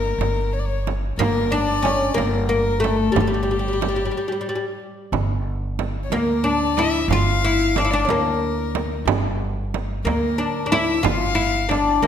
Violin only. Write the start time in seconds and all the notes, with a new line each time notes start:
Already playing: A#4
0.53 C#5
0.59 D5
0.65 C#5
1.19 A#4
1.50 D5
2.17 A#4
2.49 A#4
2.82 A4
2.90 A#4
2.97 A4
3.15 G4
3.22 A4
3.29 G4
6.04 C#5
6.12 A#4
6.44 D5
6.77 E5
7.11 F5
7.90 D5
8.09 A#4
10.06 A#4
10.72 E5
11.05 F5
11.71 D5
12.03 A#4